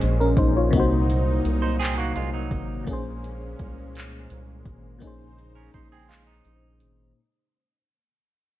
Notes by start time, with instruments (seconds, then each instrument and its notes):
Already playing: fm electric piano A#2 A#3 C#4 F#4 G#4 C5 D#5, analog synth pad A#2 G#3 A#3 C#4
0.01 analog synth bass A#1, closed hi-hat
0.20 fm electric piano C#4 A#4
0.37 analog synth bass A#1, fm electric piano D#4 C5, kick, closed hi-hat
0.57 fm electric piano F4 C#5
0.71 analog synth bass C2, fm electric piano C3 A#3, analog synth pad F#3 D#4, kick, closed hi-hat
0.75 fm electric piano D#4 F#4
0.80 fm electric piano C5
1.10 closed hi-hat
1.45 analog synth bass C2, closed hi-hat
1.62 clean electric guitar D#4 C5
1.80 clean electric guitar C4 G#4, clap, closed hi-hat
1.98 clean electric guitar A#3 F#4
2.16 analog synth bass C2, clean electric guitar G#3 F4, closed hi-hat
2.33 clean electric guitar F#3 D#4
2.51 analog synth bass G#1, kick, closed hi-hat
2.84 analog synth bass A#1, fm electric piano A#2 A#3, analog synth pad A#2 G#3 C#4, kick, closed hi-hat
2.89 fm electric piano C#4 G#4
2.93 fm electric piano C5
3.24 closed hi-hat
3.59 analog synth bass C2, kick, closed hi-hat
3.95 clap, closed hi-hat
4.30 analog synth bass C2, closed hi-hat
4.66 analog synth bass G#1, kick, closed hi-hat
4.99 analog synth bass A#1, fm electric piano A#2 A#3 C#4, analog synth pad D#4 C5, kick, closed hi-hat
5.03 analog synth pad C#3, fm electric piano D#4 G#4
5.07 fm electric piano C5
5.39 closed hi-hat
5.55 clean electric guitar C#4 A#4
5.74 analog synth bass A#1, clean electric guitar D#4 C5, kick, closed hi-hat
5.92 clean electric guitar C4 G#4
6.09 clean electric guitar G#3 F4, clap, closed hi-hat
6.27 clean electric guitar D#4
6.45 analog synth bass A#1, closed hi-hat
6.80 analog synth bass G#1, closed hi-hat